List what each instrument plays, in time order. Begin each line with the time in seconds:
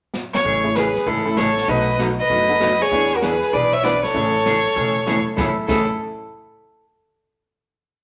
0.14 snare
0.33 fiddle C#5, snare
0.44 upright bass A1, hollow-body jazz guitar C#3 E3 A3 C#4 G#4, brush sweep, kick
0.64 honky-tonk piano A3 C#4 E4 G#4
0.75 hollow-body jazz guitar C#3 E3 A3 C#4 G#4, violin G#4, fiddle B4, snare, hi-hat pedal
0.95 snare
1.05 upright bass G#1, hollow-body jazz guitar C#3 E3 A3 C#4 G#4, violin E4, fiddle A4, brush sweep, kick
1.25 honky-tonk piano A3 C#4 E4 A4
1.36 upright bass A1, hollow-body jazz guitar C#3 E3 A3 C#4 G#4, violin A4, fiddle C#5, snare, hi-hat pedal
1.57 snare
1.67 upright bass B1, hollow-body jazz guitar B2 F#3 A3 D#4 F#4, honky-tonk piano B3 D#4 F#4 A4, violin B4, fiddle D#5, brush sweep, kick
1.98 hollow-body jazz guitar B2 F#3 A3 D#4 F#4, snare, hi-hat pedal
2.20 violin B4, fiddle D#5
2.30 upright bass F#1, hollow-body jazz guitar B2 F#3 A3 D#4 F#4, brush sweep, kick
2.49 honky-tonk piano B3 D#4 F#4 A4
2.60 hollow-body jazz guitar B2 F#3 A3 D#4 F#4, snare, hi-hat pedal
2.81 violin G#4, fiddle C#5, snare
2.91 upright bass E2, hollow-body jazz guitar E3 B3 D4 G#4, honky-tonk piano B3 D4 E4 G#4, brush sweep, kick
3.16 violin F#4, fiddle A#4
3.21 hollow-body jazz guitar E3 B3 D4 G#4, violin G#4, fiddle B4, snare, hi-hat pedal
3.42 snare
3.52 upright bass B1, hollow-body jazz guitar E3 B3 D4 G#4, violin B4, fiddle D5, brush sweep, kick
3.73 violin C#5, fiddle E5
3.83 hollow-body jazz guitar E3 B3 D4 G#4, honky-tonk piano B3 D4 E4 F#4, violin B4, fiddle D5, snare, hi-hat pedal
4.03 violin A4, fiddle C#5, snare
4.14 upright bass A1, hollow-body jazz guitar C#3 E3 A3 C#4 G#4, honky-tonk piano A3 C#4 E4 G#4, brush sweep, kick
4.45 hollow-body jazz guitar C#3 E3 A3 C#4 G#4, snare, hi-hat pedal
4.76 upright bass E1, hollow-body jazz guitar C#3 E3 A3 C#4 G#4, brush sweep, kick
5.06 hollow-body jazz guitar C#3 E3 A3 C#4 G#4, honky-tonk piano A3 C#4 E4 A4, snare, hi-hat pedal
5.36 upright bass A1, hollow-body jazz guitar A2 C#3 E3 A3 C#4 G#4, honky-tonk piano A3 C#4 E4 G#4, violin E4, fiddle A4, kick, snare
5.67 upright bass A1, hollow-body jazz guitar A2 C#3 E3 A3 C#4 G#4, honky-tonk piano A3 C#4 E4 G#4, violin E4, fiddle A4, kick, snare, crash